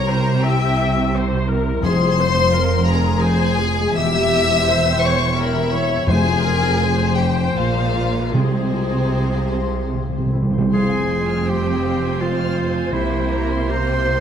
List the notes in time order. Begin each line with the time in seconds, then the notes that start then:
Already playing: C2 C3 G3 A#3 C#4 A#4 C#5 A#5 C#6
0.08 E4 C5
0.26 C#5
0.44 G4 E5 G5
0.61 E5
0.79 C#6
0.96 E5
1.14 C5 C#5
1.32 E4
1.49 G3 A#4
1.66 C4
1.82 F1 F2 F3 G#4 C5 C6
2.00 F4
2.17 C5
2.34 G#4
2.51 A#4 F5
2.68 C6
2.85 G#4 A#4 G#5 A#5
3.03 C6
3.21 G#4 C5 G#5
3.39 C5
3.58 F4 G#4
3.78 G#3
3.96 E1 E2 E3 G4 E5 E6
4.15 A#3
4.33 G4
4.50 C5
4.68 A#4 C5
4.85 G5
5.01 C#5 C6 C#6
5.20 G5
5.37 E4 A#4 C5 E5
5.55 G4
5.72 A#3 C#5
5.90 E4
6.07 F1 F2 F3 G#4 C5 G#5
6.24 F4
6.42 A#4 C5
6.60 G#4
6.79 C5 F5
6.97 C6
7.16 G4 G5 G#5
7.35 C6
7.54 A#1 A#2 F4 F5
7.74 G#3
7.94 F4
8.13 C#5
8.32 C2 C3 C4 G#4 C5
8.53 G#3
8.74 F4
8.94 C5
9.15 G#4
9.35 F5
9.54 C6
9.73 F5
9.93 C3
10.02 C3
10.10 C3 G3
10.18 C3
10.26 C3
10.32 C3 E4
10.42 C3
10.50 C3 C5
10.58 C3
10.72 F1 F2 F3 C4 G#4 C5 F5 G#5 C6
10.93 G#5
10.98 G#3
11.11 C6
11.24 F4
11.30 F6
11.48 G4 C5 G5 C6
11.68 G#5
11.74 G#4
11.86 F5
11.98 C5
12.04 G#5
12.21 G#3 F4 F5 C6
12.40 F6
12.45 F4
12.58 C6
12.69 G#3
12.76 G#5
12.92 C2 C3 A#3 E4 E5
13.14 G3 G5
13.33 A#5
13.45 A#3
13.53 C6
13.70 E4 C5 A#5 C6
13.91 G5
13.96 C5
14.08 E5